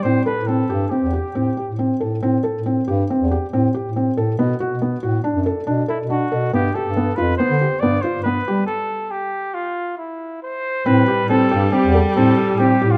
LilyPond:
<<
  \new Staff \with { instrumentName = "Flugelhorn" } { \time 5/4 \key a \minor \tempo 4 = 139 c''8 b'8 a'4 g'2 r4 | r1 r4 | r2. r8 e'8 fis'4 | g'8 a'4 b'8 c''4 d''8 c''8 b'4 |
a'4 g'4 f'4 e'4 c''4 | b'4 a'4 g'4 a'4 g'8. f'16 | }
  \new Staff \with { instrumentName = "Felt piano" } { \time 5/4 \key a \minor c'8 a'8 c'8 g'8 c'8 g'8 c'8 g'8 c'8 a'8 | c'8 a'8 c'8 g'8 c'8 g'8 c'8 g'8 c'8 a'8 | b8 fis'8 b8 fis'8 d'8 a'8 d'8 a'8 d'8 a'8 | b8 g'8 b8 f'8 b8 g'8 b8 f'8 b8 g'8 |
r1 r4 | c'8 g'8 c'8 g'8 c'8 a'8 c'8 g'8 c'8 g'8 | }
  \new Staff \with { instrumentName = "Viola" } { \clef bass \time 5/4 \key a \minor r1 r4 | r1 r4 | r1 r4 | r1 r4 |
r1 r4 | g1~ g4 | }
  \new Staff \with { instrumentName = "Bass clarinet" } { \clef bass \time 5/4 \key a \minor a,8 r16 a,8. g,8 r16 e,8 r16 a,8 r16 a,8. a,8 | a,8 r16 a,8. g,8 r16 e,8 r16 a,8 r16 a,8. a,8 | b,8 r16 b,8. a,8 r16 fis,8 r16 b,8 r16 b,8. b,8 | g,8 r16 g,8. f,8 r16 d8 r16 g,8 r16 g,8. g8 |
r1 r4 | a,8 r16 a,8. g,8 r16 e,8 r16 a,8 r16 a,8. a,8 | }
>>